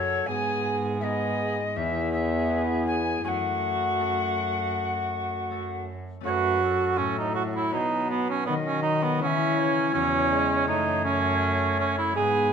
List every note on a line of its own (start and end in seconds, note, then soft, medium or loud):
0.00 0.28 F#2 medium
0.00 0.32 F#2 soft
0.00 0.32 C#4 soft
0.00 0.27 F#4 medium
0.00 0.32 F#4 soft
0.00 0.28 A4 medium
0.00 0.32 A4 soft
0.00 0.28 C#5 medium
0.26 1.79 G#2 soft
0.26 1.78 G#2 medium
0.26 0.98 B3 medium
0.26 0.99 G#4 medium
0.26 0.75 G#5 medium
1.00 1.58 B3 medium
1.00 2.48 B3 soft
1.00 1.79 D#4 soft
1.00 1.61 G#4 medium
1.00 2.49 G#4 medium
1.00 1.78 D#5 medium
1.00 1.05 E5 medium
1.75 3.28 E2 medium
1.75 3.23 E2 medium
1.75 3.21 B3 medium
1.75 3.27 G#4 medium
1.75 2.11 E5 medium
2.12 2.85 E5 medium
2.49 3.27 B3 soft
2.49 3.28 E4 soft
2.49 3.28 G#4 soft
2.86 3.23 G#5 medium
3.24 6.00 F#2 medium
3.24 6.23 F#2 soft
3.24 5.88 A3 medium
3.24 5.93 F#4 medium
3.24 3.29 G#5 medium
3.28 5.83 F#5 medium
3.99 5.49 A3 soft
3.99 5.50 C#4 soft
3.99 5.51 A4 soft
5.50 6.19 A3 soft
5.50 6.20 C#4 soft
5.50 7.77 A4 soft
6.21 7.76 F#2 medium
6.21 7.74 A3 soft
6.21 6.62 A3 medium
6.21 7.74 C#4 soft
6.21 7.71 F#4 soft
6.25 7.01 F#2 medium
6.25 7.00 F#4 medium
6.25 6.30 C#5 medium
6.29 6.65 B4 medium
6.61 9.22 F#3 medium
6.61 7.73 A4 medium
6.98 7.76 A2 medium
6.98 7.17 C#4 medium
7.19 7.34 D#4 medium
7.35 7.44 F#4 medium
7.56 7.73 E4 medium
7.70 9.22 B3 soft
7.70 9.23 D#4 soft
7.70 8.10 D#4 medium
7.70 9.23 F#4 soft
7.70 7.79 C#5 medium
7.74 8.49 B2 medium
7.74 9.24 B2 soft
7.74 8.46 B4 medium
8.10 8.28 B3 medium
8.30 8.45 C#4 medium
8.46 9.23 D#3 medium
8.46 9.24 D#3 soft
8.46 8.55 B3 medium
8.46 9.20 D#5 medium
8.67 8.82 C#4 medium
8.82 9.04 D#4 medium
9.03 9.21 B3 medium
9.18 10.72 C#3 medium
9.18 9.96 C#3 medium
9.18 9.56 E3 medium
9.18 9.91 G#3 soft
9.18 9.93 C#4 medium
9.18 9.92 E4 soft
9.22 9.27 F#5 medium
9.26 9.60 E5 medium
9.57 9.95 E3 medium
9.57 12.16 C#5 medium
9.92 10.69 E2 medium
9.92 10.72 E2 medium
9.92 10.30 F#3 medium
9.92 10.70 G#3 soft
9.92 10.67 C#4 medium
9.92 10.71 E4 medium
10.31 10.70 G#3 medium
10.64 12.16 A3 soft
10.64 12.17 C#4 soft
10.64 12.18 F#4 soft
10.68 12.18 F#2 medium
10.68 12.19 F#2 medium
10.68 12.16 A3 medium
10.68 11.04 D#4 medium
11.05 11.77 C#4 medium
11.79 11.97 C#4 medium
11.98 12.15 E4 medium
12.12 12.53 G#2 medium
12.12 12.53 G#3 medium
12.12 12.53 B3 medium
12.12 12.53 D#4 medium
12.12 12.52 G#4 loud
12.16 12.53 G#2 medium
12.16 12.53 B3 medium
12.16 12.53 B4 medium